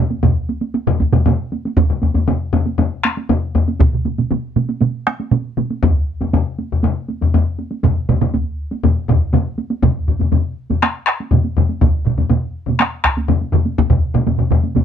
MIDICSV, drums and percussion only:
0, 0, Header, 1, 2, 480
1, 0, Start_track
1, 0, Tempo, 508044
1, 1673, Time_signature, 4, 2, 24, 8
1, 6939, Tempo, 495050
1, 14213, End_track
2, 0, Start_track
2, 0, Title_t, "Taiko and cinematic ensemble drums"
2, 99, Note_on_c, 9, 48, 49
2, 194, Note_off_c, 9, 48, 0
2, 216, Note_on_c, 9, 45, 90
2, 216, Note_on_c, 9, 48, 64
2, 224, Note_on_c, 9, 41, 65
2, 224, Note_on_c, 9, 47, 92
2, 310, Note_off_c, 9, 48, 0
2, 311, Note_off_c, 9, 45, 0
2, 319, Note_off_c, 9, 41, 0
2, 319, Note_off_c, 9, 47, 0
2, 463, Note_on_c, 9, 48, 52
2, 558, Note_off_c, 9, 48, 0
2, 579, Note_on_c, 9, 48, 50
2, 673, Note_off_c, 9, 48, 0
2, 701, Note_on_c, 9, 48, 63
2, 795, Note_off_c, 9, 48, 0
2, 824, Note_on_c, 9, 45, 99
2, 824, Note_on_c, 9, 47, 88
2, 919, Note_off_c, 9, 45, 0
2, 919, Note_off_c, 9, 47, 0
2, 945, Note_on_c, 9, 41, 66
2, 946, Note_on_c, 9, 48, 51
2, 1039, Note_off_c, 9, 41, 0
2, 1040, Note_off_c, 9, 48, 0
2, 1063, Note_on_c, 9, 47, 95
2, 1065, Note_on_c, 9, 48, 47
2, 1067, Note_on_c, 9, 45, 94
2, 1158, Note_off_c, 9, 47, 0
2, 1160, Note_off_c, 9, 48, 0
2, 1162, Note_off_c, 9, 45, 0
2, 1188, Note_on_c, 9, 45, 95
2, 1189, Note_on_c, 9, 47, 96
2, 1191, Note_on_c, 9, 48, 75
2, 1282, Note_off_c, 9, 45, 0
2, 1284, Note_off_c, 9, 47, 0
2, 1285, Note_off_c, 9, 48, 0
2, 1436, Note_on_c, 9, 48, 51
2, 1530, Note_off_c, 9, 48, 0
2, 1561, Note_on_c, 9, 48, 54
2, 1656, Note_off_c, 9, 48, 0
2, 1671, Note_on_c, 9, 48, 72
2, 1672, Note_on_c, 9, 41, 98
2, 1674, Note_on_c, 9, 45, 65
2, 1765, Note_off_c, 9, 48, 0
2, 1766, Note_off_c, 9, 41, 0
2, 1769, Note_off_c, 9, 45, 0
2, 1794, Note_on_c, 9, 45, 67
2, 1888, Note_off_c, 9, 45, 0
2, 1905, Note_on_c, 9, 48, 56
2, 1917, Note_on_c, 9, 45, 64
2, 2000, Note_off_c, 9, 48, 0
2, 2012, Note_off_c, 9, 45, 0
2, 2025, Note_on_c, 9, 48, 54
2, 2030, Note_on_c, 9, 45, 67
2, 2120, Note_off_c, 9, 48, 0
2, 2124, Note_off_c, 9, 45, 0
2, 2150, Note_on_c, 9, 45, 93
2, 2152, Note_on_c, 9, 48, 73
2, 2245, Note_off_c, 9, 45, 0
2, 2246, Note_off_c, 9, 48, 0
2, 2389, Note_on_c, 9, 45, 96
2, 2393, Note_on_c, 9, 48, 57
2, 2483, Note_off_c, 9, 45, 0
2, 2488, Note_off_c, 9, 48, 0
2, 2510, Note_on_c, 9, 48, 55
2, 2605, Note_off_c, 9, 48, 0
2, 2627, Note_on_c, 9, 45, 97
2, 2635, Note_on_c, 9, 48, 70
2, 2721, Note_off_c, 9, 45, 0
2, 2730, Note_off_c, 9, 48, 0
2, 2870, Note_on_c, 9, 37, 66
2, 2880, Note_on_c, 9, 48, 55
2, 2965, Note_off_c, 9, 37, 0
2, 2974, Note_off_c, 9, 48, 0
2, 2997, Note_on_c, 9, 48, 49
2, 3091, Note_off_c, 9, 48, 0
2, 3111, Note_on_c, 9, 45, 95
2, 3117, Note_on_c, 9, 48, 72
2, 3206, Note_off_c, 9, 45, 0
2, 3212, Note_off_c, 9, 48, 0
2, 3353, Note_on_c, 9, 45, 93
2, 3359, Note_on_c, 9, 48, 50
2, 3448, Note_off_c, 9, 45, 0
2, 3453, Note_off_c, 9, 48, 0
2, 3475, Note_on_c, 9, 48, 53
2, 3570, Note_off_c, 9, 48, 0
2, 3589, Note_on_c, 9, 48, 68
2, 3594, Note_on_c, 9, 41, 105
2, 3601, Note_on_c, 9, 47, 72
2, 3683, Note_off_c, 9, 48, 0
2, 3688, Note_off_c, 9, 41, 0
2, 3696, Note_off_c, 9, 47, 0
2, 3714, Note_on_c, 9, 47, 66
2, 3809, Note_off_c, 9, 47, 0
2, 3829, Note_on_c, 9, 48, 52
2, 3832, Note_on_c, 9, 47, 63
2, 3923, Note_off_c, 9, 48, 0
2, 3926, Note_off_c, 9, 47, 0
2, 3953, Note_on_c, 9, 47, 65
2, 3954, Note_on_c, 9, 48, 51
2, 4047, Note_off_c, 9, 47, 0
2, 4048, Note_off_c, 9, 48, 0
2, 4068, Note_on_c, 9, 48, 66
2, 4074, Note_on_c, 9, 47, 93
2, 4163, Note_off_c, 9, 48, 0
2, 4168, Note_off_c, 9, 47, 0
2, 4310, Note_on_c, 9, 47, 89
2, 4312, Note_on_c, 9, 48, 53
2, 4405, Note_off_c, 9, 47, 0
2, 4406, Note_off_c, 9, 48, 0
2, 4429, Note_on_c, 9, 48, 53
2, 4523, Note_off_c, 9, 48, 0
2, 4548, Note_on_c, 9, 47, 91
2, 4550, Note_on_c, 9, 48, 61
2, 4643, Note_off_c, 9, 47, 0
2, 4644, Note_off_c, 9, 48, 0
2, 4788, Note_on_c, 9, 37, 68
2, 4792, Note_on_c, 9, 48, 50
2, 4882, Note_off_c, 9, 37, 0
2, 4887, Note_off_c, 9, 48, 0
2, 4910, Note_on_c, 9, 48, 46
2, 5005, Note_off_c, 9, 48, 0
2, 5020, Note_on_c, 9, 47, 95
2, 5031, Note_on_c, 9, 48, 66
2, 5115, Note_off_c, 9, 47, 0
2, 5126, Note_off_c, 9, 48, 0
2, 5264, Note_on_c, 9, 47, 94
2, 5272, Note_on_c, 9, 48, 47
2, 5358, Note_off_c, 9, 47, 0
2, 5367, Note_off_c, 9, 48, 0
2, 5390, Note_on_c, 9, 48, 49
2, 5484, Note_off_c, 9, 48, 0
2, 5505, Note_on_c, 9, 41, 107
2, 5508, Note_on_c, 9, 45, 91
2, 5513, Note_on_c, 9, 48, 64
2, 5599, Note_off_c, 9, 41, 0
2, 5603, Note_off_c, 9, 45, 0
2, 5607, Note_off_c, 9, 48, 0
2, 5864, Note_on_c, 9, 48, 46
2, 5874, Note_on_c, 9, 45, 65
2, 5958, Note_off_c, 9, 48, 0
2, 5968, Note_off_c, 9, 45, 0
2, 5984, Note_on_c, 9, 48, 58
2, 5989, Note_on_c, 9, 45, 94
2, 6078, Note_off_c, 9, 48, 0
2, 6083, Note_off_c, 9, 45, 0
2, 6222, Note_on_c, 9, 48, 47
2, 6317, Note_off_c, 9, 48, 0
2, 6352, Note_on_c, 9, 45, 65
2, 6446, Note_off_c, 9, 45, 0
2, 6452, Note_on_c, 9, 48, 57
2, 6463, Note_on_c, 9, 45, 94
2, 6547, Note_off_c, 9, 48, 0
2, 6558, Note_off_c, 9, 45, 0
2, 6694, Note_on_c, 9, 48, 43
2, 6788, Note_off_c, 9, 48, 0
2, 6816, Note_on_c, 9, 48, 42
2, 6823, Note_on_c, 9, 45, 71
2, 6910, Note_off_c, 9, 48, 0
2, 6917, Note_off_c, 9, 45, 0
2, 6935, Note_on_c, 9, 48, 62
2, 6937, Note_on_c, 9, 45, 94
2, 7032, Note_off_c, 9, 48, 0
2, 7034, Note_off_c, 9, 45, 0
2, 7175, Note_on_c, 9, 48, 46
2, 7272, Note_off_c, 9, 48, 0
2, 7291, Note_on_c, 9, 48, 45
2, 7388, Note_off_c, 9, 48, 0
2, 7412, Note_on_c, 9, 48, 57
2, 7416, Note_on_c, 9, 41, 89
2, 7420, Note_on_c, 9, 47, 98
2, 7424, Note_on_c, 9, 45, 91
2, 7509, Note_off_c, 9, 48, 0
2, 7513, Note_off_c, 9, 41, 0
2, 7517, Note_off_c, 9, 47, 0
2, 7521, Note_off_c, 9, 45, 0
2, 7661, Note_on_c, 9, 47, 91
2, 7663, Note_on_c, 9, 45, 88
2, 7663, Note_on_c, 9, 48, 47
2, 7758, Note_off_c, 9, 47, 0
2, 7760, Note_off_c, 9, 45, 0
2, 7760, Note_off_c, 9, 48, 0
2, 7782, Note_on_c, 9, 48, 43
2, 7783, Note_on_c, 9, 47, 96
2, 7784, Note_on_c, 9, 45, 87
2, 7879, Note_off_c, 9, 48, 0
2, 7880, Note_off_c, 9, 47, 0
2, 7881, Note_off_c, 9, 45, 0
2, 7902, Note_on_c, 9, 48, 64
2, 7903, Note_on_c, 9, 41, 64
2, 7999, Note_off_c, 9, 48, 0
2, 8000, Note_off_c, 9, 41, 0
2, 8265, Note_on_c, 9, 48, 47
2, 8362, Note_off_c, 9, 48, 0
2, 8384, Note_on_c, 9, 45, 91
2, 8390, Note_on_c, 9, 48, 61
2, 8391, Note_on_c, 9, 47, 91
2, 8481, Note_off_c, 9, 45, 0
2, 8487, Note_off_c, 9, 48, 0
2, 8488, Note_off_c, 9, 47, 0
2, 8624, Note_on_c, 9, 41, 71
2, 8627, Note_on_c, 9, 48, 47
2, 8633, Note_on_c, 9, 45, 89
2, 8634, Note_on_c, 9, 47, 90
2, 8721, Note_off_c, 9, 41, 0
2, 8724, Note_off_c, 9, 48, 0
2, 8730, Note_off_c, 9, 45, 0
2, 8731, Note_off_c, 9, 47, 0
2, 8868, Note_on_c, 9, 48, 63
2, 8871, Note_on_c, 9, 45, 90
2, 8877, Note_on_c, 9, 47, 94
2, 8965, Note_off_c, 9, 48, 0
2, 8968, Note_off_c, 9, 45, 0
2, 8974, Note_off_c, 9, 47, 0
2, 9105, Note_on_c, 9, 48, 49
2, 9202, Note_off_c, 9, 48, 0
2, 9224, Note_on_c, 9, 48, 51
2, 9321, Note_off_c, 9, 48, 0
2, 9344, Note_on_c, 9, 41, 90
2, 9346, Note_on_c, 9, 48, 58
2, 9347, Note_on_c, 9, 45, 85
2, 9351, Note_on_c, 9, 47, 88
2, 9441, Note_off_c, 9, 41, 0
2, 9443, Note_off_c, 9, 48, 0
2, 9444, Note_off_c, 9, 45, 0
2, 9448, Note_off_c, 9, 47, 0
2, 9591, Note_on_c, 9, 45, 57
2, 9592, Note_on_c, 9, 47, 54
2, 9688, Note_off_c, 9, 45, 0
2, 9689, Note_off_c, 9, 47, 0
2, 9709, Note_on_c, 9, 48, 44
2, 9713, Note_on_c, 9, 47, 57
2, 9719, Note_on_c, 9, 45, 59
2, 9806, Note_off_c, 9, 48, 0
2, 9810, Note_off_c, 9, 47, 0
2, 9816, Note_off_c, 9, 45, 0
2, 9823, Note_on_c, 9, 48, 59
2, 9829, Note_on_c, 9, 45, 83
2, 9829, Note_on_c, 9, 47, 78
2, 9920, Note_off_c, 9, 48, 0
2, 9926, Note_off_c, 9, 45, 0
2, 9926, Note_off_c, 9, 47, 0
2, 10194, Note_on_c, 9, 48, 44
2, 10196, Note_on_c, 9, 45, 60
2, 10196, Note_on_c, 9, 47, 59
2, 10291, Note_off_c, 9, 48, 0
2, 10293, Note_off_c, 9, 45, 0
2, 10293, Note_off_c, 9, 47, 0
2, 10313, Note_on_c, 9, 37, 61
2, 10315, Note_on_c, 9, 48, 55
2, 10317, Note_off_c, 9, 37, 0
2, 10317, Note_on_c, 9, 37, 60
2, 10412, Note_off_c, 9, 48, 0
2, 10414, Note_off_c, 9, 37, 0
2, 10549, Note_on_c, 9, 37, 62
2, 10560, Note_off_c, 9, 37, 0
2, 10560, Note_on_c, 9, 37, 60
2, 10657, Note_off_c, 9, 37, 0
2, 10680, Note_on_c, 9, 48, 41
2, 10777, Note_off_c, 9, 48, 0
2, 10785, Note_on_c, 9, 45, 87
2, 10798, Note_on_c, 9, 48, 57
2, 10803, Note_on_c, 9, 47, 81
2, 10882, Note_off_c, 9, 45, 0
2, 10895, Note_off_c, 9, 48, 0
2, 10900, Note_off_c, 9, 47, 0
2, 10913, Note_on_c, 9, 48, 38
2, 11010, Note_off_c, 9, 48, 0
2, 11033, Note_on_c, 9, 45, 81
2, 11044, Note_on_c, 9, 47, 88
2, 11130, Note_off_c, 9, 45, 0
2, 11141, Note_off_c, 9, 47, 0
2, 11154, Note_on_c, 9, 48, 42
2, 11251, Note_off_c, 9, 48, 0
2, 11271, Note_on_c, 9, 48, 56
2, 11272, Note_on_c, 9, 41, 79
2, 11272, Note_on_c, 9, 45, 79
2, 11280, Note_on_c, 9, 47, 86
2, 11368, Note_off_c, 9, 48, 0
2, 11369, Note_off_c, 9, 41, 0
2, 11369, Note_off_c, 9, 45, 0
2, 11377, Note_off_c, 9, 47, 0
2, 11507, Note_on_c, 9, 41, 57
2, 11515, Note_on_c, 9, 45, 59
2, 11517, Note_on_c, 9, 47, 61
2, 11604, Note_off_c, 9, 41, 0
2, 11612, Note_off_c, 9, 45, 0
2, 11614, Note_off_c, 9, 47, 0
2, 11625, Note_on_c, 9, 45, 58
2, 11631, Note_on_c, 9, 48, 43
2, 11635, Note_on_c, 9, 47, 60
2, 11722, Note_off_c, 9, 45, 0
2, 11728, Note_off_c, 9, 48, 0
2, 11732, Note_off_c, 9, 47, 0
2, 11739, Note_on_c, 9, 45, 86
2, 11746, Note_on_c, 9, 48, 58
2, 11754, Note_on_c, 9, 47, 82
2, 11836, Note_off_c, 9, 45, 0
2, 11843, Note_off_c, 9, 48, 0
2, 11851, Note_off_c, 9, 47, 0
2, 12095, Note_on_c, 9, 45, 60
2, 12115, Note_on_c, 9, 48, 44
2, 12120, Note_on_c, 9, 47, 58
2, 12192, Note_off_c, 9, 45, 0
2, 12212, Note_off_c, 9, 48, 0
2, 12217, Note_off_c, 9, 47, 0
2, 12219, Note_on_c, 9, 37, 60
2, 12228, Note_on_c, 9, 48, 52
2, 12236, Note_off_c, 9, 37, 0
2, 12236, Note_on_c, 9, 37, 62
2, 12325, Note_off_c, 9, 48, 0
2, 12333, Note_off_c, 9, 37, 0
2, 12463, Note_on_c, 9, 37, 64
2, 12466, Note_on_c, 9, 41, 65
2, 12478, Note_off_c, 9, 37, 0
2, 12478, Note_on_c, 9, 37, 63
2, 12563, Note_off_c, 9, 41, 0
2, 12575, Note_off_c, 9, 37, 0
2, 12588, Note_on_c, 9, 48, 42
2, 12685, Note_off_c, 9, 48, 0
2, 12697, Note_on_c, 9, 45, 87
2, 12708, Note_on_c, 9, 47, 82
2, 12708, Note_on_c, 9, 48, 57
2, 12794, Note_off_c, 9, 45, 0
2, 12805, Note_off_c, 9, 47, 0
2, 12805, Note_off_c, 9, 48, 0
2, 12823, Note_on_c, 9, 48, 40
2, 12920, Note_off_c, 9, 48, 0
2, 12937, Note_on_c, 9, 45, 83
2, 12943, Note_on_c, 9, 47, 90
2, 13034, Note_off_c, 9, 45, 0
2, 13040, Note_off_c, 9, 47, 0
2, 13061, Note_on_c, 9, 48, 45
2, 13158, Note_off_c, 9, 48, 0
2, 13182, Note_on_c, 9, 41, 101
2, 13182, Note_on_c, 9, 48, 57
2, 13279, Note_off_c, 9, 41, 0
2, 13279, Note_off_c, 9, 48, 0
2, 13294, Note_on_c, 9, 45, 85
2, 13297, Note_on_c, 9, 47, 89
2, 13391, Note_off_c, 9, 45, 0
2, 13394, Note_off_c, 9, 47, 0
2, 13534, Note_on_c, 9, 45, 87
2, 13538, Note_on_c, 9, 47, 87
2, 13541, Note_on_c, 9, 48, 43
2, 13631, Note_off_c, 9, 45, 0
2, 13635, Note_off_c, 9, 47, 0
2, 13638, Note_off_c, 9, 48, 0
2, 13652, Note_on_c, 9, 45, 65
2, 13654, Note_on_c, 9, 47, 61
2, 13656, Note_on_c, 9, 48, 61
2, 13749, Note_off_c, 9, 45, 0
2, 13751, Note_off_c, 9, 47, 0
2, 13753, Note_off_c, 9, 48, 0
2, 13767, Note_on_c, 9, 47, 63
2, 13769, Note_on_c, 9, 45, 62
2, 13864, Note_off_c, 9, 47, 0
2, 13866, Note_off_c, 9, 45, 0
2, 13885, Note_on_c, 9, 47, 84
2, 13893, Note_on_c, 9, 45, 91
2, 13982, Note_off_c, 9, 47, 0
2, 13990, Note_off_c, 9, 45, 0
2, 14009, Note_on_c, 9, 48, 47
2, 14106, Note_off_c, 9, 48, 0
2, 14123, Note_on_c, 9, 47, 64
2, 14130, Note_on_c, 9, 48, 61
2, 14133, Note_on_c, 9, 45, 65
2, 14213, Note_off_c, 9, 45, 0
2, 14213, Note_off_c, 9, 47, 0
2, 14213, Note_off_c, 9, 48, 0
2, 14213, End_track
0, 0, End_of_file